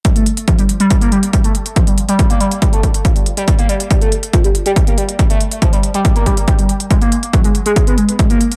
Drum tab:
HH |xxxxxxxxxxxxxxxx|xxxxxxxxxxxxxxxx|xxxxxxxxxxxxxxxx|xxxxxxxxxxxxxxxx|
BD |o---o---o---o---|o---o---o-o-o---|o---o---o---o---|o---o---o-o-o---|

HH |xxxxxxxxxxxxxxxx|
BD |o---o---o---o---|